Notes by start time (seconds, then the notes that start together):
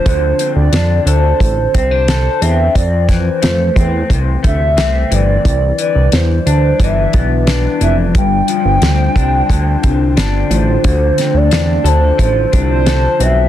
Already playing: F3 C4 D4 C5
0.06 D2 D3, kick, closed hi-hat
0.39 C4, closed hi-hat
0.56 D2 D5
0.72 F2 D4, snare, closed hi-hat
1.06 D2 A4 C5, closed hi-hat
1.40 A1, kick, closed hi-hat
1.74 C2 C4, kick, closed hi-hat
1.91 D4 C5
2.08 A4, snare, closed hi-hat
2.41 E2 C4 E5, closed hi-hat
2.75 F2 D5, kick, closed hi-hat
3.09 E3 C5, kick, snare, closed hi-hat
3.42 F2 A3, snare, closed hi-hat
3.76 E2 C4, kick, closed hi-hat
4.10 C2 C3, kick, closed hi-hat
4.43 D2 A3 E5, kick, closed hi-hat
4.77 C2 C4, snare, closed hi-hat
5.11 G1 E3 D5, closed hi-hat
5.45 C2 D3 G3 D4 E4 D5, kick, closed hi-hat
5.78 E3 D5, closed hi-hat
5.95 C2
6.12 E2 C5, snare, closed hi-hat
6.46 D2 D4, closed hi-hat
6.79 G1 E3 E5, kick, closed hi-hat
7.13 B1 B3, kick, closed hi-hat
7.47 D4, snare, closed hi-hat
7.81 F1 E3 E5, closed hi-hat
8.15 G1 G2 F4 C5 G5, kick, closed hi-hat
8.48 F3, closed hi-hat
8.65 G1
8.82 D2 C4, snare, closed hi-hat
9.15 C2 D4, kick, closed hi-hat
9.49 D2 D3, kick, closed hi-hat
9.83 C2 C4, kick, closed hi-hat
10.17 G1 D4, snare, closed hi-hat
10.50 A1 F3 C5, closed hi-hat
10.84 D2 D3 A3 A4, kick, closed hi-hat
11.18 C4, snare, closed hi-hat
11.34 D2 D5
11.51 E2 D4, snare, closed hi-hat
11.84 D2 A4 C5, closed hi-hat
12.18 A1 F3, kick, closed hi-hat
12.52 C2 D4, kick, closed hi-hat
12.71 C5
12.86 A4, snare, closed hi-hat
13.20 B1 C4 E5, closed hi-hat